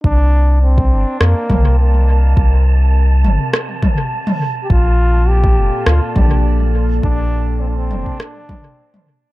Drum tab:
SD |--------r-------|--------r-------|--------r-------|--------r-------|
T2 |----------o-----|------o---o--o--|----------o-----|------o---o--o--|
BD |o----o----o-----|o---------o-----|o----o----o-----|o------o--o-----|